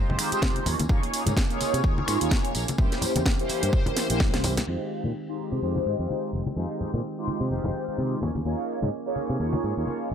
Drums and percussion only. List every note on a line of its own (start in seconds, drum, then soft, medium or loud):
0.10 high conga medium
0.10 low conga medium
0.19 finger snap medium
0.19 open hi-hat loud
0.19 tambourine medium
0.32 closed hi-hat medium
0.32 tambourine medium
0.42 kick loud
0.42 snare loud
0.42 tambourine soft
0.42 high conga medium
0.56 closed hi-hat medium
0.66 open hi-hat medium
0.66 tambourine medium
0.66 low conga medium
0.79 closed hi-hat medium
0.79 tambourine soft
0.79 high conga medium
0.89 kick loud
0.89 tambourine soft
1.03 closed hi-hat soft
1.14 open hi-hat loud
1.14 tambourine loud
1.27 closed hi-hat medium
1.27 tambourine medium
1.27 high conga loud
1.37 kick loud
1.37 snare loud
1.50 closed hi-hat soft
1.61 open hi-hat medium
1.61 tambourine medium
1.61 high conga medium
1.74 closed hi-hat medium
1.74 tambourine medium
1.84 kick loud
1.98 high conga medium
2.08 finger snap medium
2.08 open hi-hat loud
2.08 tambourine medium
2.21 closed hi-hat medium
2.21 tambourine medium
2.31 kick loud
2.31 snare loud
2.31 tambourine soft
2.31 high conga medium
2.45 closed hi-hat medium
2.55 open hi-hat medium
2.55 tambourine loud
2.68 closed hi-hat medium
2.68 tambourine medium
2.68 high conga medium
2.78 kick loud
2.78 tambourine soft
2.92 snare soft
2.92 closed hi-hat medium
3.02 open hi-hat loud
3.02 tambourine loud
3.02 low conga medium
3.16 closed hi-hat medium
3.16 tambourine medium
3.16 high conga loud
3.26 kick loud
3.26 snare loud
3.39 closed hi-hat soft
3.49 open hi-hat medium
3.49 tambourine medium
3.63 closed hi-hat medium
3.63 tambourine soft
3.73 kick loud
3.73 tambourine soft
3.86 closed hi-hat soft
3.86 high conga medium
3.86 low conga medium
3.97 snare medium
3.97 open hi-hat loud
3.97 tambourine loud
4.10 closed hi-hat medium
4.10 tambourine medium
4.20 kick loud
4.20 snare medium
4.20 tambourine soft
4.20 high conga medium
4.34 snare medium
4.34 closed hi-hat medium
4.44 open hi-hat medium
4.44 tambourine loud
4.44 low conga medium
4.57 snare medium
4.57 closed hi-hat medium
4.57 tambourine medium
4.57 high conga medium
4.67 crash medium
4.67 tambourine soft
5.04 tambourine medium
5.04 high conga medium
5.76 high conga medium
5.87 tambourine medium
6.10 tambourine soft
6.10 high conga medium
6.33 tambourine loud
6.46 tambourine soft
6.46 high conga medium
6.58 tambourine soft
6.81 tambourine medium
6.81 low conga medium
6.94 tambourine medium
6.94 high conga medium
7.05 tambourine soft
7.28 tambourine loud
7.28 high conga medium
7.41 tambourine soft
7.51 tambourine soft
7.64 high conga medium
7.64 low conga medium
7.74 tambourine medium
7.89 tambourine medium
7.98 tambourine soft
7.98 high conga medium
8.22 tambourine loud
8.22 low conga medium
8.35 tambourine soft
8.35 high conga medium
8.45 tambourine soft
8.69 tambourine medium
8.83 tambourine soft
8.83 high conga medium
8.93 tambourine soft
9.16 tambourine medium
9.16 high conga medium
9.30 tambourine soft
9.39 tambourine soft
9.53 high conga loud
9.64 tambourine loud
9.77 tambourine soft
9.87 tambourine soft
9.87 high conga medium
10.11 tambourine medium